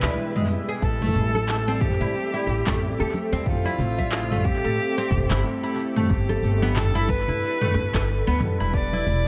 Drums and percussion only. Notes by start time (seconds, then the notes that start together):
0.03 clap, low conga, shaker
0.17 shaker
0.36 mid tom, shaker
0.50 shaker
0.69 shaker
0.82 kick, shaker
1.02 mid tom, high conga
1.16 shaker
1.35 high conga, shaker
1.49 clap, shaker
1.69 shaker
1.81 kick, mid tom, shaker
2.01 low conga, shaker
2.15 shaker
2.47 high bongo, shaker
2.67 kick, clap, mid tom, shaker
2.81 shaker
3.00 shaker
3.14 high conga, shaker
3.33 shaker
3.46 kick, mid tom, shaker
3.66 high conga
3.79 low conga, shaker
3.99 kick, high conga, shaker
4.12 clap, shaker
4.31 mid tom, shaker
4.45 kick, shaker
4.65 shaker
4.79 shaker
5.11 kick, mid tom, shaker
5.30 clap, low conga, shaker
5.45 shaker
5.64 shaker
5.78 shaker
5.97 mid tom, shaker
6.10 kick, shaker
6.29 high conga
6.44 shaker
6.62 high conga, shaker
6.76 clap, mid tom, shaker
6.96 shaker
7.09 kick, shaker
7.28 low conga, shaker
7.43 shaker
7.62 mid tom
7.74 high bongo, shaker
7.94 kick, clap, shaker
8.09 shaker
8.28 shaker
8.41 mid tom, high conga, shaker
8.61 shaker
8.74 kick, shaker
8.93 high conga, shaker
9.08 low conga, shaker